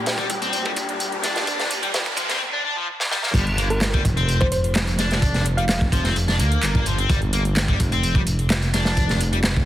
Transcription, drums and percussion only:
0.06 snare loud
0.06 closed hi-hat medium
0.06 closed hi-hat soft
0.18 kick loud
0.18 closed hi-hat soft
0.30 kick medium
0.30 closed hi-hat medium
0.42 closed hi-hat soft
0.53 closed hi-hat medium
0.53 closed hi-hat soft
0.65 kick loud
0.65 closed hi-hat soft
0.76 kick medium
0.76 closed hi-hat medium
0.89 closed hi-hat soft
1.00 closed hi-hat soft
1.00 closed hi-hat medium
1.12 closed hi-hat soft
1.24 snare soft
1.24 closed hi-hat medium
1.36 snare medium
1.36 closed hi-hat soft
1.47 kick loud
1.47 closed hi-hat soft
1.47 closed hi-hat medium
1.59 snare soft
1.59 closed hi-hat soft
1.71 closed hi-hat medium
1.83 closed hi-hat soft
1.94 snare loud
1.94 closed hi-hat soft
1.94 closed hi-hat medium
2.06 kick loud
2.06 closed hi-hat soft
2.17 kick medium
2.17 closed hi-hat medium
2.29 snare soft
2.29 closed hi-hat soft
3.00 snare medium
3.11 snare medium
3.23 snare medium
3.34 kick loud
3.34 closed hi-hat soft
3.34 closed hi-hat medium
3.34 crash medium
3.47 closed hi-hat soft
3.58 closed hi-hat medium
3.70 closed hi-hat soft
3.81 snare loud
3.81 clap loud
3.81 closed hi-hat medium
3.81 closed hi-hat soft
3.94 kick medium
3.94 closed hi-hat soft
4.05 kick loud
4.05 closed hi-hat medium
4.17 closed hi-hat soft
4.29 closed hi-hat soft
4.29 closed hi-hat medium
4.41 kick medium
4.41 closed hi-hat soft
4.52 closed hi-hat medium
4.64 closed hi-hat soft
4.75 snare loud
4.75 clap loud
4.75 closed hi-hat medium
4.75 closed hi-hat soft
4.87 closed hi-hat soft
4.99 snare soft
4.99 closed hi-hat medium
5.11 snare medium
5.11 closed hi-hat soft
5.22 kick loud
5.22 closed hi-hat soft
5.22 closed hi-hat medium
5.34 snare soft
5.34 closed hi-hat soft
5.46 closed hi-hat medium
5.58 closed hi-hat soft
5.69 snare loud
5.69 clap loud
5.69 closed hi-hat soft
5.69 closed hi-hat medium
5.81 kick medium
5.81 closed hi-hat soft
5.92 kick loud
5.92 closed hi-hat medium
6.04 snare soft
6.04 closed hi-hat soft
6.16 closed hi-hat medium
6.16 closed hi-hat soft
6.28 snare soft
6.28 closed hi-hat soft
6.39 closed hi-hat medium
6.52 closed hi-hat soft
6.63 clap loud
6.63 closed hi-hat medium
6.63 closed hi-hat soft
6.75 kick medium
6.75 closed hi-hat soft
6.86 closed hi-hat medium
6.98 closed hi-hat soft
7.10 kick loud
7.10 closed hi-hat soft
7.10 closed hi-hat medium
7.22 closed hi-hat soft
7.33 closed hi-hat medium
7.45 closed hi-hat soft
7.56 snare loud
7.56 clap loud
7.56 closed hi-hat medium
7.56 closed hi-hat soft
7.68 kick loud
7.68 closed hi-hat soft
7.80 kick loud
7.80 closed hi-hat medium
7.92 closed hi-hat soft
8.03 closed hi-hat medium
8.03 closed hi-hat soft
8.15 kick medium
8.15 closed hi-hat soft
8.27 closed hi-hat medium
8.39 closed hi-hat soft
8.50 snare loud
8.50 clap loud
8.50 closed hi-hat medium
8.50 closed hi-hat soft
8.62 closed hi-hat soft
8.74 snare soft
8.74 closed hi-hat medium
8.85 snare medium
8.85 closed hi-hat soft
8.97 kick loud
8.97 closed hi-hat medium
8.97 closed hi-hat soft
9.09 snare soft
9.09 closed hi-hat soft
9.20 closed hi-hat medium
9.33 closed hi-hat soft
9.44 snare loud
9.44 clap loud
9.44 closed hi-hat loud
9.44 closed hi-hat soft
9.56 kick medium
9.56 closed hi-hat soft

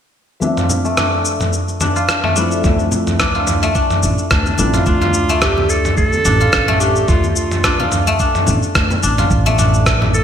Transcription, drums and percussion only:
0.42 high conga medium
0.42 shaker soft
0.57 mid tom medium
0.57 shaker soft
0.70 low conga medium
0.70 shaker medium
0.85 shaker soft
0.97 cross-stick medium
0.97 mid tom medium
0.97 muted conga soft
0.97 shaker soft
1.25 shaker medium
1.40 mid tom medium
1.40 low conga medium
1.40 shaker soft
1.53 shaker soft
1.68 shaker soft
1.80 mid tom medium
1.80 high conga medium
1.80 shaker medium
1.96 shaker soft
2.09 cross-stick medium
2.09 shaker soft
2.24 mid tom medium
2.24 high conga medium
2.36 shaker medium
2.52 shaker soft
2.64 kick loud
2.64 mid tom medium
2.64 high conga medium
2.64 shaker soft
2.79 shaker soft
2.92 low conga medium
2.92 shaker medium
3.07 mid tom medium
3.07 shaker soft
3.20 kick medium
3.20 cross-stick medium
3.20 muted conga soft
3.20 shaker soft
3.47 mid tom medium
3.47 shaker medium
3.63 shaker soft
3.75 kick loud
3.75 muted conga soft
3.75 shaker soft
3.90 mid tom medium
3.90 shaker soft
4.03 shaker medium
4.18 shaker soft
4.30 kick loud
4.30 cross-stick loud
4.30 mid tom medium
4.30 muted conga soft
4.30 shaker soft
4.46 high conga medium
4.46 shaker soft
4.58 high conga medium
4.58 shaker medium
4.74 mid tom medium
4.74 shaker soft
4.86 kick loud
4.86 shaker soft
5.02 mid tom medium
5.02 high conga medium
5.02 shaker soft
5.14 shaker medium
5.29 shaker soft
5.42 kick loud
5.42 cross-stick loud
5.42 mid tom medium
5.42 muted conga medium
5.42 shaker soft
5.57 high conga medium
5.57 low conga medium
5.69 shaker medium
5.85 mid tom medium
5.85 shaker soft
5.97 kick medium
5.97 shaker soft
6.13 high conga medium
6.13 shaker soft
6.25 mid tom medium
6.25 low conga medium
6.25 shaker medium
6.41 shaker soft
6.53 kick medium
6.53 cross-stick medium
6.53 shaker soft
6.68 mid tom medium
6.81 shaker medium
6.96 shaker soft
7.08 kick loud
7.08 mid tom medium
7.08 shaker soft
7.24 muted conga soft
7.24 high conga medium
7.24 shaker soft
7.36 shaker medium
7.51 mid tom medium
7.51 shaker soft
7.64 kick loud
7.64 cross-stick medium
7.64 muted conga soft
7.64 shaker soft
7.80 high conga medium
7.80 low conga medium
7.92 mid tom medium
7.92 shaker medium
8.07 shaker soft
8.20 kick medium
8.20 muted conga soft
8.20 shaker soft
8.35 mid tom medium
8.35 shaker soft
8.47 high conga medium
8.47 low conga medium
8.47 shaker medium
8.63 shaker soft
8.75 kick loud
8.75 cross-stick medium
8.75 mid tom medium
8.75 muted conga soft
8.75 shaker soft
8.91 high conga medium
8.91 low conga medium
8.91 shaker soft
9.03 shaker medium
9.18 mid tom medium
9.18 high conga soft
9.18 shaker soft
9.31 kick loud
9.31 shaker soft
9.46 high conga medium
9.46 shaker soft
9.59 mid tom medium
9.59 shaker medium
9.74 shaker soft
9.86 kick loud
9.86 cross-stick medium
9.86 muted conga medium
9.86 shaker soft
10.02 mid tom medium
10.02 high conga medium
10.02 low conga medium
10.14 shaker medium

